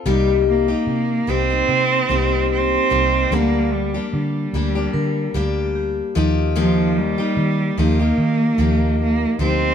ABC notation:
X:1
M:4/4
L:1/16
Q:"Swing 16ths" 1/4=74
K:Cdor
V:1 name="Vibraphone"
z16 | z8 B2 G2 G3 z | z16 |]
V:2 name="Steel-string acoustic guitar"
[C,G,B,EG]3 [B,EG]3 [G,B,EG] [B,EG]3 [G,B,EG]4 [G,B,EG]2 | [D,G,B,DG]3 [B,DG]3 [G,B,DG] [B,DG]3 [G,B,DG]4 [F,B,EG]2 | [E,F,B,EG]3 [B,EG]3 [F,B,EG] [B,EG]3 [F,B,EG]4 [F,B,EG]2 |]
V:3 name="Cello"
G,2 B,4 C6 C4 | B,2 G,2 G,8 z4 | F,2 G,4 B,6 B,2 C2 |]
V:4 name="Fingered electric bass" clef=bass
C,,4 C,2 C,,2 C,2 C,,4 C,,2 | D,,4 D,2 D,,2 D,2 D,,4 E,,2- | E,,4 E,2 E,,2 E,2 E,,4 D,,2 |]